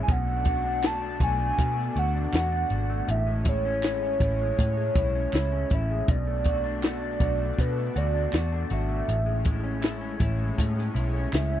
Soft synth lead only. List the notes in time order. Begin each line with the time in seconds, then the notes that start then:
0.03 G#5
0.12 F#5
0.86 A5
1.23 G#5
1.99 F#5
2.36 F#5
3.11 E5
3.49 C#5
5.74 E5
6.11 D5
6.86 D5
7.60 B4
7.97 D5
8.73 E5
11.35 E5